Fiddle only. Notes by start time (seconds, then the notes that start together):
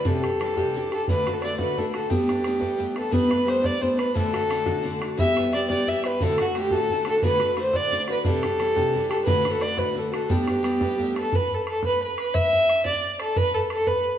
0.07 A4
0.93 A4
1.08 B4
1.33 A4
1.43 D5
1.60 B4
1.78 A4
1.93 A4
2.10 G4
2.98 A4
3.11 B4
3.49 C5
3.65 D5
3.82 C5
3.98 B4
4.16 A4
5.19 E5
5.54 D5
5.70 D5
5.89 E5
6.06 B4
6.22 A4
6.42 F#4
6.57 G4
6.72 A4
7.09 A4
7.24 B4
7.60 C5
7.75 D5
8.11 B4
8.26 A4
9.10 A4
9.25 B4
9.53 A4
9.62 D5
9.79 B4
9.98 A4
10.13 A4
10.31 G4
11.19 A4
11.35 B4
11.54 A4
11.70 A4
11.86 B4
12.02 B4
12.35 E5
12.85 D5
13.21 A4
13.37 B4
13.54 A4
13.72 A4
13.87 B4